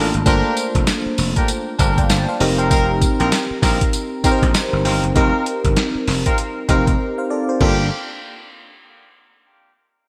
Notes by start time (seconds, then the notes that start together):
Already playing: A1 A3 A#3 D4 F4 G4 A4 A#4
0.14 G#1, closed hi-hat
0.26 G1 A#3 D4 F4 G4 A#4 C5, kick, closed hi-hat, tambourine
0.57 closed hi-hat, tambourine
0.75 F1, kick, closed hi-hat
0.87 snare, closed hi-hat, tambourine
1.06 muted slap bass stroke
1.18 F1, open hi-hat, tambourine
1.36 D4 F4 G4 A#4, kick, closed hi-hat
1.48 closed hi-hat, tambourine
1.79 G1 D4 F4 G4 A#4 C5 F5, kick, closed hi-hat, tambourine
1.97 D5 G5, kick, closed hi-hat
2.10 G1 A5, snare, closed hi-hat, tambourine
2.29 C5 F5
2.40 F1 C4 D#4 G4 A#4 A#5, open hi-hat
2.58 C4 D#4 F4 A#4, closed hi-hat
2.70 C4 D#4 F4 A#4, kick, closed hi-hat, tambourine
3.01 kick, closed hi-hat, tambourine
3.19 A#1 C4 D#4 F4 A#4, closed hi-hat
3.32 snare, closed hi-hat, tambourine
3.51 muted slap bass stroke
3.62 A#1 C4 D#4 F4 A#4, kick, snare, open hi-hat, tambourine
3.81 kick, closed hi-hat
3.93 closed hi-hat, tambourine
4.24 C4 D#4 F4 G4 A#4, muted slap bass stroke, kick, closed hi-hat, tambourine
4.32 C5
4.42 A#1, kick, closed hi-hat
4.54 snare, closed hi-hat, tambourine
4.73 G1
4.85 G1 C4 D#4 F4 A#4, open hi-hat
5.03 F#1, closed hi-hat
5.15 F1 C4 D#4 F4 G4 A#4, kick, closed hi-hat
5.46 closed hi-hat
5.65 G1, kick, closed hi-hat
5.76 snare, closed hi-hat
5.95 muted slap bass stroke
6.07 F1, snare, open hi-hat
6.26 C4 D#4 F4 A#4, kick, closed hi-hat
6.38 closed hi-hat
6.68 F1 C4 D#4 F4 G4 A#4, kick, closed hi-hat
6.87 kick, closed hi-hat
7.18 C5 F5
7.30 A4 D5
7.49 G4 C5
7.60 G1 A#3 D4 F4 G4 A4, kick, crash